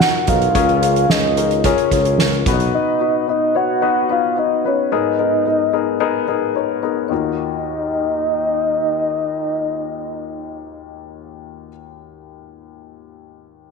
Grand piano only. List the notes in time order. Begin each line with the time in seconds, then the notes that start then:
Already playing: D#3 C#5
0.00 D#4 F4 F#4 A#4
0.27 D#4 F4 F#4 A#4
0.55 C#3 C#4 F4 G#4 A#4
0.82 C#4 F4 G#4 A#4
1.10 C#4 F4 G#4 A#4
1.37 C#4 F4 G#4 A#4
1.65 C#4 F4 G#4 A#4
1.92 C#4 F4 G#4 A#4
2.19 C#4 F4 G#4 A#4
2.47 B2 B3 C#4 F#4 B4
2.53 D#4
3.01 B3 D#4 F#4 B4
3.28 B3 D#4 F#4 B4
3.55 B3 D#4 F#4 C#5
3.82 B3 D#4 F#4 B4
4.09 B3 D#4 F#4 B4
4.37 B3 D#4 F#4 B4
4.65 B3 D#4 F#4 B4
4.92 G#2 B3 D#4 G#4 A#4
5.19 B3 D#4 G#4 A#4
5.46 B3 D#4 G#4 A#4
5.73 B3 D#4 G#4 A#4
6.00 B3 D#4 G#4 A#4
6.28 B3 D#4 G#4 A#4
6.55 B3 D#4 G#4 C#5
6.83 B3 D#4 G#4 A#4
7.09 D#2 D#4 F4 F#4 A#4